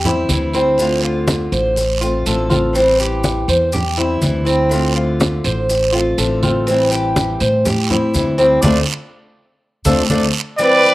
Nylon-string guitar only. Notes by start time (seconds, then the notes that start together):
0.05 G3 C4 E4
0.30 E3 G3 C4 E4
0.54 G3 C4 E4
0.78 D3 A3 C4 F4
1.77 muted nylon-string guitar stroke
2.01 A3 C4 F4
2.26 D3 A3 C4 F4
2.50 A3 C4 F4
2.73 E3 G3 C4 E4
3.72 muted nylon-string guitar stroke
3.97 G3 C4 E4
4.21 E3 G3 C4 E4
4.45 G3 C4 E4
4.69 D3 A3 C4 F4
5.69 muted nylon-string guitar stroke
5.92 A3 C4 F4
6.18 D3 A3 C4 F4
6.43 A3 C4 F4
6.67 E3 G3 C4 E4
7.66 muted nylon-string guitar stroke
7.90 G3 C4 E4
8.14 E3 G3 C4 E4
8.39 G3 C4 E4
8.64 A3 C4 D4
9.86 A3 C4 D4
10.11 A3 C4 D4
10.59 E3 G3 C4 E4